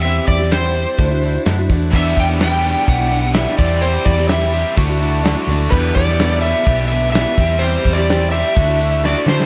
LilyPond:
<<
  \new Staff \with { instrumentName = "Electric slide guitar" } { \time 4/4 \key e \minor \tempo 4 = 127 e''8 d''8 c''2 r4 | e''8 g''8 g''4 fis''4 e''8 d''8 | c''8 d''8 e''4 r2 | b'8 d''4 e''4 e''8 e''4 |
c''8. d''8. e''4. d''8 c''8 | }
  \new Staff \with { instrumentName = "Steel-string acoustic guitar" } { \time 4/4 \key e \minor <e, e g c' e' g'>8. <g c' e' g'>16 <e, e g c' e' g'>8 <g c' e' g'>8 <d a d' e' fis'>16 <d' e' fis'>16 <a d' e' fis'>16 <d' e' fis'>16 <d a d' e' fis'>16 <d' e' fis'>16 <a d' e' fis'>8 | <e, e g b d' e'>8. <g b d' e'>16 <e, e g b d' e'>8 <g b d' e'>8. <g b d' e'>16 <g b d' e'>16 <g b d' e'>16 <e, e g b d' e'>16 <g b d' e'>16 <g c' e' g'>8 | <e, e g c' e' g'>8. <g c' e' g'>16 <e, e g c' e' g'>8 <g c' e' g'>8 <d a d' e' fis'>16 <d' e' fis'>16 <a d' e' fis'>8 <d a d' e' fis'>16 <d' e' fis'>16 <a d' e' fis'>8 | <d e g b e'>8. <g b e'>16 <d e g b e'>8 <d g b e'>16 <g b e'>8 <g b e'>16 <d g b e'>8 <d e g b e'>16 <g b e'>16 <g c' e' g'>8 |
<e, e g c' e' g'>8. <g c' e' g'>16 <e, e g c' e' g'>8 <g c' g'>8 <d a d' e' fis'>16 <d' e' fis'>16 <a d' e' fis'>8 <d a d' e' fis'>16 <d' e' fis'>16 <a d' e' fis'>8 | }
  \new Staff \with { instrumentName = "Overdriven electric guitar" } { \clef bass \time 4/4 \key e \minor r1 | <e, b, e g b g'>2 <e, b, e g b g'>4. <e g c' g'>8~ | <e g c' g'>4. <e g c' g'>8 <d a d' fis'>2 | <e, b, e g b g'>2 <e, b, e g b g'>4. <e g c' g'>8~ |
<e g c' g'>4. <e g c' g'>8 <d a d' fis'>2 | }
  \new Staff \with { instrumentName = "Picked electric bass" } { \clef bass \time 4/4 \key e \minor e,8 e,4. d,4 fis,8 e,8 | e,8 e,4. b,,4. e,8~ | e,8 e,4. d,4. d,8 | e,8 e,4. b,,4. e,8~ |
e,8 e,4. d,4. d8 | }
  \new DrumStaff \with { instrumentName = "Drums" } \drummode { \time 4/4 r8 <hho bd>16 sn16 <hho sn>16 sn16 hho8 <hho bd>8 hho8 <hho sn>8 <hho bd>8 | <cymc bd>8 <hho bd>8 <hho sn>8 hho8 <hho bd>8 hho8 <hho sn>8 <hho bd sn>8 | hho8 <hho bd>16 sn16 <hho sn>16 sn16 hho8 <hho bd>8 hho8 <hho sn>8 <hho sn>8 | <cymc bd>8 <hho bd>16 sn16 <hho sn>8 hho8 <hho bd>8 hho8 <hho sn>8 <hho bd sn>8 |
hho8 <hho bd>16 sn16 <hho sn>8 hho8 <hho bd>8 hho8 sn8 sn16 sn16 | }
>>